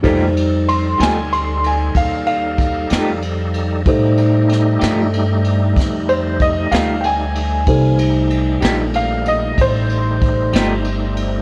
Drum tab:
RD |xxxxxxxxxxxx|xxxxxxxxxxxx|xxxxxxxxxxxx|
SD |---o-----o--|--oo--o--o--|---o-----o--|
BD |o-----o-o---|o-----o-o---|o-----o-o---|